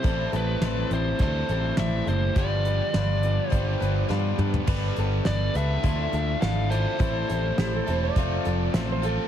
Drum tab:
CC |----------------|----------------|x---------------|----------------|
HH |x-x-x-x-x-x-x-x-|x-x-x-x-x-x-----|--x-x-x-x-x-x-x-|x-x-x-x-x-x-x-x-|
SD |----o-------o---|----o-------o---|----o-------o---|----o-------o---|
T2 |----------------|--------------o-|----------------|----------------|
FT |----------------|---------------o|----------------|----------------|
BD |o-------o-------|o-------o-------|o-------o-------|o-------o-------|